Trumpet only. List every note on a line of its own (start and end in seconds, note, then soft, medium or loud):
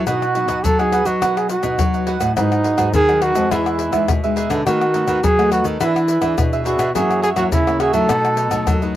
0.07 0.66 F#4 medium
0.65 0.81 A4 loud
0.79 1.07 G#4 medium
1.06 1.38 F#4 medium
1.37 1.49 G#4 medium
1.50 2.04 F#4 medium
2.37 2.90 D#4 medium
2.94 3.24 G#4 loud
3.22 3.53 F#4 medium
3.51 4.09 E4 medium
4.66 5.26 F#4 medium
5.24 5.52 G#4 loud
5.53 5.65 F#4 medium
5.82 6.35 E4 medium
6.66 6.93 F#4 medium
6.96 7.22 G#4 medium
7.23 7.30 G#4 medium
7.37 7.44 F#4 medium
7.53 7.82 E4 medium
7.80 7.93 G#4 medium
7.94 8.91 A4 loud